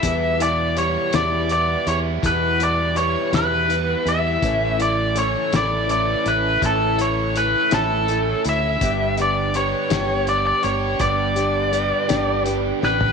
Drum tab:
HH |x-x-x-x-x-x-|x-x-x-x-x-x-|x-x-x-x-x-x-|x-x-x-x-x-x-|
SD |------o-----|------o-----|------o-----|------o-----|
FT |------------|------------|------------|------------|
BD |o-----------|o-----------|o-----------|o-----------|

HH |x-x-x-x-x-x-|x-x-x-x-x---|
SD |------o-----|------o---o-|
FT |------------|-----------o|
BD |o-----------|o-----------|